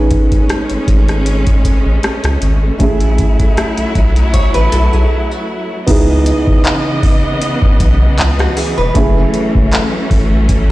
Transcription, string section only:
Already playing: G#3 A3 C#4
2.80 F#3 E4
5.87 C#3 E3 B3 D#5
8.96 F#3 A3 C#4

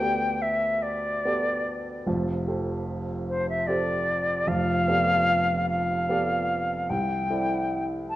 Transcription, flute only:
Already playing: G5
0.42 E5
0.82 D5
3.29 C5
3.49 E5
3.67 D5
4.48 F5
5.70 F5
6.89 G5
8.09 A5

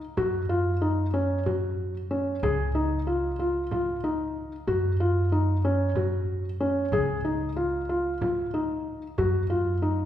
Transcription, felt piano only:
0.17 F#4
0.49 F4
0.82 D#4
1.14 C#4
1.46 F#4
2.11 C#4
2.43 G#4
2.75 D#4
3.07 F4
3.39 F4
3.72 F4
4.04 D#4
4.68 F#4
5.00 F4
5.32 D#4
5.65 C#4
5.96 F#4
6.60 C#4
6.93 G#4
7.25 D#4
7.56 F4
7.89 F4
8.22 F4
8.54 D#4
9.18 F#4
9.50 F4
9.82 D#4

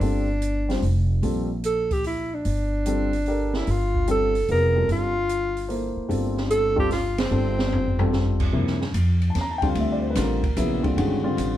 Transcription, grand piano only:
0.02 G3 C4 F4 A4
0.69 G3 C4 F4 C5
1.23 G3 C4 F4 A4
2.86 G3 C4 F4 A4
3.27 D4 G4 A4 A#4
4.08 G3 C4 F4 A4
4.49 F#3 B3 E4 G#4
4.75 G3 C4 F4 A4
5.69 A#3 E4 A4 C5
6.09 G3 C4 F4 A4
6.76 G3 C4 F4 A4
7.31 G3 C4 F4 A4
7.99 G3 C4 F4 A4
8.53 C3 F3 A#3 E4
9.30 A5
9.41 A#5
9.51 A5
9.58 G5
9.62 D3 G3 C4 F4
9.69 F5
9.80 E5
9.92 D5
10.00 C5
10.10 B4
10.16 D3 G3 C4 F4
10.21 A#4
10.57 C#3 F#3 B3 E4
10.83 D3 G3 C4 F4
10.97 D#3 G#3 C#4 F#4
11.24 D3 G3 C4 F4

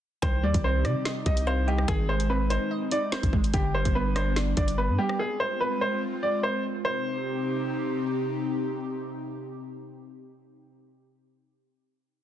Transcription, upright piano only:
0.23 C5
0.44 D5
0.64 C5
0.85 D5
1.26 D#5
1.47 C5
1.68 G4
1.88 G#4
2.09 C5
2.30 B4
2.50 C5
2.92 D5
3.12 C5
3.54 G4
3.74 C5
3.95 B4
4.16 C5
4.57 D5
4.78 B4
4.98 G4
5.19 G#4
5.40 C5
5.61 B4
5.81 C5
6.23 D5
6.43 C5
6.85 C5

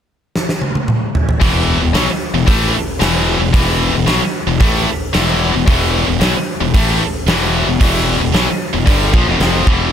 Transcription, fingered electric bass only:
1.42 E1
1.81 E1
1.94 B1
2.08 muted fingered electric bass stroke
2.34 E1
2.48 A1
3.01 E1
3.40 E1
3.54 E1
3.93 E1
4.06 B1
4.20 muted fingered electric bass stroke
4.47 E1
4.60 A1
5.15 E1
5.55 E1
5.68 E1
6.08 E1
6.20 B1
6.34 muted fingered electric bass stroke
6.61 E1
6.74 A1
7.26 E1
7.67 E1
7.81 E1
8.20 E1
8.34 B1
8.48 muted fingered electric bass stroke
8.74 E1
8.87 G1
9.14 A#1
9.27 E1
9.40 F1
9.67 E1

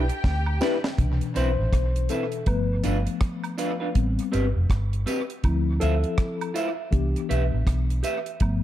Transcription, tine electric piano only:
0.61 D4 E4 G4 B4
0.98 B2 E3 D4
1.37 C5
2.10 A4
2.46 F3 A3 B3 B4
3.94 G3 B3 C4
5.44 F3 C4 E4
5.80 A4
6.54 E4
6.91 E3 B3 D4 G4
8.41 F3 A3 B3

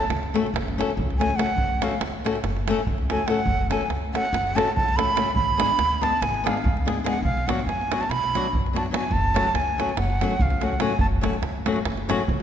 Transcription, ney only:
Already playing: A5
1.18 G#5
1.36 F#5
1.83 F5
3.10 G#5
3.27 F#5
3.70 G#5
4.14 F#5
4.56 A5
4.76 A5
4.96 B5
5.35 B5
6.03 A5
6.22 G#5
6.47 F5
7.07 F#5
7.24 F5
7.47 F#5
7.66 G#5
8.01 A5
8.10 B5
8.77 A5
8.95 G#5
9.12 A5
9.55 G#5
9.99 F#5
10.42 F5
10.64 F#5
10.81 G#5
11.01 A5

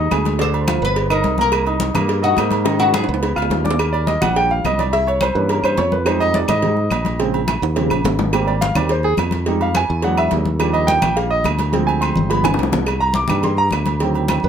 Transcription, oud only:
0.41 C5
0.85 B4
1.11 A#4
1.41 A#4
2.24 F#4
2.39 D#4
2.80 F#4
2.94 G#4

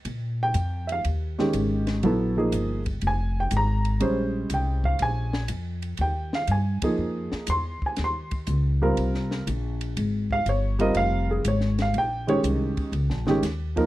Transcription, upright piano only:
0.43 G5
0.87 E5
0.92 F5
1.38 D#3 G#3 C#4 G4
2.03 F#3 B3 E4 A4
2.37 F3 A#3 D#4 G#4
3.07 G#5
3.40 G5
3.57 A#5
4.00 G3 G#3 C#4 C5
4.54 G5
4.85 F5
5.02 G#5
6.01 G5
6.35 F5
6.51 G#5
6.83 F3 A#3 D#4 G#4
7.50 C6
7.86 G#5
8.04 C6
8.82 G3 C4 F4 A#4
10.32 F5
10.49 C#5
10.79 G3 C4 F4 A#4 D#5
10.97 F5
11.31 G#4
11.48 C#5
11.82 F5
11.98 G5
12.27 D#3 G#3 C#4 G4 C#5
13.27 D#3 G#3 C#4 G4
13.76 F3 A#3 D#4 A#4

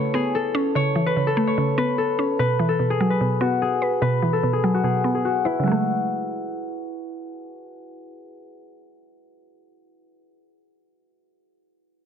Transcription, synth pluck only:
Already playing: C#3 E3 A3
0.14 B3
0.55 C#4
0.75 C#3
0.96 E3
1.17 C#3
1.37 A3
1.58 C#3
1.78 B3
2.19 C#4
2.39 B2
2.59 E3
2.79 B2
3.00 F#3
3.21 B2
3.41 B3
3.82 B4
4.02 B2
4.22 E3
4.43 B2
4.64 F#3
4.84 B2
5.04 B3
5.45 B4
5.59 C#3
5.63 F#3
5.67 G#3
5.71 A3

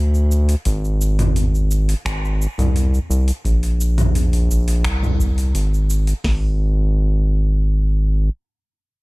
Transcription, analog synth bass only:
Already playing: D2
0.66 G#1
2.05 G#1
2.58 C2
3.10 C2
3.45 A#1
4.84 C2
5.54 G#1
6.24 G#1

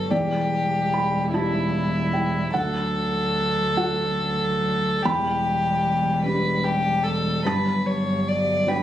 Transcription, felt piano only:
Already playing: D4 F#4 B4 C#5
0.10 E2 D5
0.94 B5
1.33 E4 G4 A5
2.13 G5
2.54 D2 F#5
3.77 F#4 A4 F#5
5.05 E2 B5
6.25 D4 G4
7.45 G2 A5
8.67 F#3 D4 G5

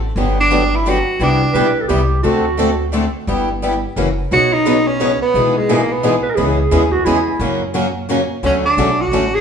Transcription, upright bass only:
Already playing: A1
0.16 G1
1.19 C2
1.54 B1
1.90 C2
2.23 D2
3.27 G1
3.96 F#1
4.31 B1
5.34 B1
6.37 C#2
6.71 D#2
7.06 E2
7.40 F#2
8.43 D2
8.77 B1
9.11 A1

